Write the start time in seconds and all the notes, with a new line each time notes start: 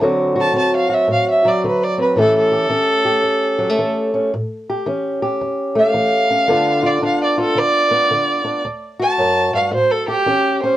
0.00 D2 D3 F#3 C4 F#4
0.36 F#4
0.41 A5
0.53 D3 C4
0.58 A5
0.76 F5
0.89 F#4
0.94 E5
1.07 A2
1.12 F5
1.30 E5
1.45 F#3 D5
1.64 D3 B4
1.83 D5
1.98 C4 B4
2.16 A2 E3 A3 C#4 G4 A4
2.37 A4
2.52 G4
2.69 E3 C#4
3.05 G4
3.23 E2
3.58 F#3
3.69 A3
3.78 E3
4.14 C#4
4.34 A2
4.69 G4
4.86 E3 C#4
5.22 G4
5.41 E2
5.75 A3 F5
5.94 E3
6.30 C#4
6.48 G2 D3 B3 D4 F4
6.83 F4 D5
7.02 D3 D4 F5
7.23 D5
7.38 F4 A4
7.55 D3 D5
7.91 B3
8.11 D3
8.45 D4
8.65 D2
9.00 F#4 A5
9.18 F#2
9.54 G2 F5
9.71 A2 C5
9.91 A4
10.08 G4
10.26 E3 C#4
10.62 C#4 C5